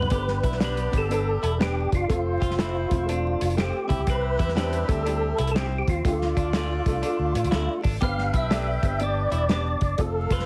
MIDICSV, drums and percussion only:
0, 0, Header, 1, 2, 480
1, 0, Start_track
1, 0, Tempo, 493421
1, 116, Time_signature, 4, 2, 24, 8
1, 10174, End_track
2, 0, Start_track
2, 0, Title_t, "Drums"
2, 24, Note_on_c, 9, 43, 83
2, 100, Note_on_c, 9, 42, 99
2, 110, Note_on_c, 9, 36, 110
2, 121, Note_off_c, 9, 43, 0
2, 197, Note_off_c, 9, 42, 0
2, 208, Note_off_c, 9, 36, 0
2, 271, Note_on_c, 9, 38, 33
2, 369, Note_off_c, 9, 38, 0
2, 424, Note_on_c, 9, 36, 89
2, 426, Note_on_c, 9, 42, 67
2, 507, Note_on_c, 9, 38, 36
2, 521, Note_off_c, 9, 36, 0
2, 523, Note_off_c, 9, 42, 0
2, 589, Note_off_c, 9, 38, 0
2, 589, Note_on_c, 9, 38, 127
2, 597, Note_on_c, 9, 42, 85
2, 686, Note_off_c, 9, 38, 0
2, 695, Note_off_c, 9, 42, 0
2, 751, Note_on_c, 9, 42, 47
2, 848, Note_off_c, 9, 42, 0
2, 906, Note_on_c, 9, 36, 81
2, 907, Note_on_c, 9, 42, 88
2, 1003, Note_off_c, 9, 36, 0
2, 1005, Note_off_c, 9, 42, 0
2, 1079, Note_on_c, 9, 42, 81
2, 1176, Note_off_c, 9, 42, 0
2, 1396, Note_on_c, 9, 42, 79
2, 1493, Note_off_c, 9, 42, 0
2, 1564, Note_on_c, 9, 38, 99
2, 1564, Note_on_c, 9, 42, 72
2, 1661, Note_off_c, 9, 38, 0
2, 1661, Note_off_c, 9, 42, 0
2, 1872, Note_on_c, 9, 36, 80
2, 1875, Note_on_c, 9, 42, 75
2, 1969, Note_off_c, 9, 36, 0
2, 1972, Note_off_c, 9, 42, 0
2, 2040, Note_on_c, 9, 36, 119
2, 2044, Note_on_c, 9, 42, 97
2, 2137, Note_off_c, 9, 36, 0
2, 2141, Note_off_c, 9, 42, 0
2, 2352, Note_on_c, 9, 36, 88
2, 2360, Note_on_c, 9, 42, 68
2, 2437, Note_on_c, 9, 38, 37
2, 2449, Note_off_c, 9, 36, 0
2, 2458, Note_off_c, 9, 42, 0
2, 2517, Note_off_c, 9, 38, 0
2, 2517, Note_on_c, 9, 38, 127
2, 2526, Note_on_c, 9, 42, 84
2, 2614, Note_off_c, 9, 38, 0
2, 2623, Note_off_c, 9, 42, 0
2, 2830, Note_on_c, 9, 42, 88
2, 2831, Note_on_c, 9, 36, 88
2, 2928, Note_off_c, 9, 36, 0
2, 2928, Note_off_c, 9, 42, 0
2, 3003, Note_on_c, 9, 42, 76
2, 3101, Note_off_c, 9, 42, 0
2, 3318, Note_on_c, 9, 42, 86
2, 3405, Note_off_c, 9, 42, 0
2, 3405, Note_on_c, 9, 42, 52
2, 3485, Note_off_c, 9, 42, 0
2, 3485, Note_on_c, 9, 38, 89
2, 3485, Note_on_c, 9, 42, 72
2, 3583, Note_off_c, 9, 38, 0
2, 3583, Note_off_c, 9, 42, 0
2, 3795, Note_on_c, 9, 36, 74
2, 3796, Note_on_c, 9, 42, 67
2, 3893, Note_off_c, 9, 36, 0
2, 3893, Note_off_c, 9, 42, 0
2, 3959, Note_on_c, 9, 42, 93
2, 3962, Note_on_c, 9, 36, 108
2, 4056, Note_off_c, 9, 42, 0
2, 4059, Note_off_c, 9, 36, 0
2, 4274, Note_on_c, 9, 36, 86
2, 4278, Note_on_c, 9, 42, 65
2, 4363, Note_on_c, 9, 38, 30
2, 4372, Note_off_c, 9, 36, 0
2, 4375, Note_off_c, 9, 42, 0
2, 4443, Note_off_c, 9, 38, 0
2, 4443, Note_on_c, 9, 38, 125
2, 4452, Note_on_c, 9, 42, 90
2, 4540, Note_off_c, 9, 38, 0
2, 4549, Note_off_c, 9, 42, 0
2, 4599, Note_on_c, 9, 42, 52
2, 4697, Note_off_c, 9, 42, 0
2, 4754, Note_on_c, 9, 36, 93
2, 4754, Note_on_c, 9, 42, 88
2, 4851, Note_off_c, 9, 36, 0
2, 4851, Note_off_c, 9, 42, 0
2, 4927, Note_on_c, 9, 42, 75
2, 5024, Note_off_c, 9, 42, 0
2, 5239, Note_on_c, 9, 42, 89
2, 5326, Note_off_c, 9, 42, 0
2, 5326, Note_on_c, 9, 42, 57
2, 5408, Note_off_c, 9, 42, 0
2, 5408, Note_on_c, 9, 38, 92
2, 5408, Note_on_c, 9, 42, 67
2, 5505, Note_off_c, 9, 38, 0
2, 5505, Note_off_c, 9, 42, 0
2, 5717, Note_on_c, 9, 36, 84
2, 5721, Note_on_c, 9, 42, 73
2, 5814, Note_off_c, 9, 36, 0
2, 5818, Note_off_c, 9, 42, 0
2, 5884, Note_on_c, 9, 36, 125
2, 5887, Note_on_c, 9, 42, 98
2, 5981, Note_off_c, 9, 36, 0
2, 5985, Note_off_c, 9, 42, 0
2, 6047, Note_on_c, 9, 38, 35
2, 6145, Note_off_c, 9, 38, 0
2, 6194, Note_on_c, 9, 36, 90
2, 6199, Note_on_c, 9, 42, 65
2, 6291, Note_off_c, 9, 36, 0
2, 6296, Note_off_c, 9, 42, 0
2, 6355, Note_on_c, 9, 38, 121
2, 6364, Note_on_c, 9, 42, 89
2, 6452, Note_off_c, 9, 38, 0
2, 6461, Note_off_c, 9, 42, 0
2, 6673, Note_on_c, 9, 36, 94
2, 6674, Note_on_c, 9, 42, 89
2, 6770, Note_off_c, 9, 36, 0
2, 6772, Note_off_c, 9, 42, 0
2, 6837, Note_on_c, 9, 42, 80
2, 6935, Note_off_c, 9, 42, 0
2, 7154, Note_on_c, 9, 42, 83
2, 7243, Note_off_c, 9, 42, 0
2, 7243, Note_on_c, 9, 42, 52
2, 7316, Note_off_c, 9, 42, 0
2, 7316, Note_on_c, 9, 38, 91
2, 7316, Note_on_c, 9, 42, 74
2, 7414, Note_off_c, 9, 38, 0
2, 7414, Note_off_c, 9, 42, 0
2, 7628, Note_on_c, 9, 46, 51
2, 7633, Note_on_c, 9, 36, 84
2, 7726, Note_off_c, 9, 46, 0
2, 7730, Note_off_c, 9, 36, 0
2, 7797, Note_on_c, 9, 42, 94
2, 7799, Note_on_c, 9, 36, 123
2, 7895, Note_off_c, 9, 42, 0
2, 7897, Note_off_c, 9, 36, 0
2, 7959, Note_on_c, 9, 38, 31
2, 8056, Note_off_c, 9, 38, 0
2, 8110, Note_on_c, 9, 36, 89
2, 8110, Note_on_c, 9, 42, 67
2, 8207, Note_off_c, 9, 36, 0
2, 8207, Note_off_c, 9, 42, 0
2, 8276, Note_on_c, 9, 38, 124
2, 8285, Note_on_c, 9, 42, 89
2, 8374, Note_off_c, 9, 38, 0
2, 8383, Note_off_c, 9, 42, 0
2, 8588, Note_on_c, 9, 36, 94
2, 8590, Note_on_c, 9, 42, 84
2, 8685, Note_off_c, 9, 36, 0
2, 8687, Note_off_c, 9, 42, 0
2, 8752, Note_on_c, 9, 42, 77
2, 8849, Note_off_c, 9, 42, 0
2, 9066, Note_on_c, 9, 42, 78
2, 9164, Note_off_c, 9, 42, 0
2, 9236, Note_on_c, 9, 38, 96
2, 9236, Note_on_c, 9, 42, 69
2, 9333, Note_off_c, 9, 38, 0
2, 9333, Note_off_c, 9, 42, 0
2, 9543, Note_on_c, 9, 42, 73
2, 9548, Note_on_c, 9, 36, 82
2, 9640, Note_off_c, 9, 42, 0
2, 9645, Note_off_c, 9, 36, 0
2, 9708, Note_on_c, 9, 42, 90
2, 9714, Note_on_c, 9, 36, 109
2, 9805, Note_off_c, 9, 42, 0
2, 9811, Note_off_c, 9, 36, 0
2, 10024, Note_on_c, 9, 36, 86
2, 10025, Note_on_c, 9, 42, 66
2, 10112, Note_on_c, 9, 38, 32
2, 10122, Note_off_c, 9, 36, 0
2, 10122, Note_off_c, 9, 42, 0
2, 10174, Note_off_c, 9, 38, 0
2, 10174, End_track
0, 0, End_of_file